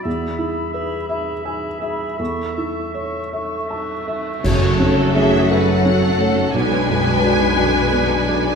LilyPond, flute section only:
\new Staff \with { instrumentName = "Flute section" } { \time 6/8 \key fis \minor \tempo 4. = 57 b''8 b''8 b''8 b''8 b''8 b''8 | cis'''8 cis'''8 cis'''8 cis'''8 cis'''8 cis'''8 | fis'4 gis'8 a'4. | b'2. | }